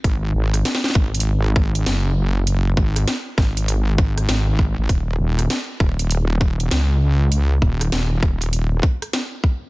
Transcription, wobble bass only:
X:1
M:4/4
L:1/16
Q:"Swing 16ths" 1/4=99
K:Gb
V:1 name="Wobble bass" clef=bass
A,,,2 A,,,2 z2 A,,,6 G,,,4- | G,,,2 A,,,2 z2 A,,,6 A,,,3 A,,, | E,,,2 E,,,2 z2 E,,,6 D,,4- | D,,2 E,,,2 E,,,6 z6 |]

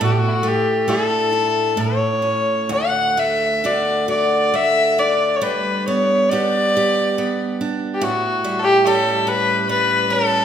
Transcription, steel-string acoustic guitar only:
X:1
M:3/4
L:1/8
Q:1/4=68
K:Amix
V:1 name="Steel-string acoustic guitar"
A,, A, [A,DE] E A,, C | D,, A, [A,DF] F A, D | G, B, [B,DG] G B, D | A,, G, [G,CG] G G, C |]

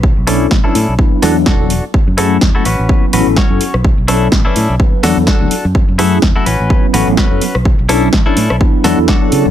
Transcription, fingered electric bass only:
X:1
M:4/4
L:1/16
Q:"Swing 16ths" 1/4=126
K:Bdor
V:1 name="Fingered electric bass" clef=bass
B,,, B,,,3 z2 A,, B,,, z2 E,,2 E,,,3 z | z F,,3 E,, z A,,, A,,, z2 A,,, A,,, z F,, z B,,,- | B,,, B,,,3 A,,, z A,, B,,, z2 E,, E,, z D,, z F,,- | F,, F,,3 E,, z A,,, A,,, z2 A,,, A,,, z F,, z B,,,- |
B,,, B,,,3 A,,, z A,, B,,, z2 E,, E,, z2 C, E,,, |]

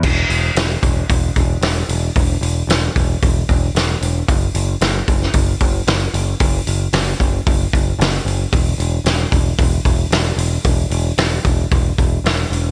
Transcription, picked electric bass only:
X:1
M:4/4
L:1/8
Q:1/4=113
K:F#mix
V:1 name="Picked electric bass" clef=bass
E,,, E,,, E,,, E,,, E,,, E,,, E,,, E,,, | E,,, E,,, E,,, E,,, E,,, E,,, E,,, E,,, | F,,, F,,, F,,, F,,, F,,, F,,, F,,, F,,, | F,,, F,,, F,,, F,,, F,,, F,,, F,,, F,,, |
E,,, E,,, E,,, E,,, E,,, E,,, E,,, E,,, | E,,, E,,, E,,, E,,, E,,, E,,, E,,, E,,, |]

